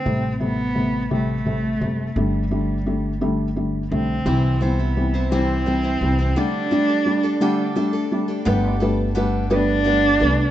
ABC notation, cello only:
X:1
M:6/8
L:1/8
Q:3/8=57
K:G
V:1 name="Cello"
C B,2 A,3 | G,4 z C- | C B,2 C3 | D4 z2 |
z3 D3 |]